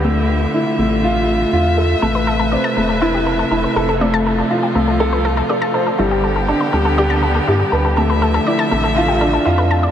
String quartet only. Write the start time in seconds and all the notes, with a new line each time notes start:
Already playing: D3
0.04 A3 F4 E5
2.02 C3 B4
4.01 F3 F4
5.99 D3 G3 B3 G4
7.98 D3 F3 A3 E5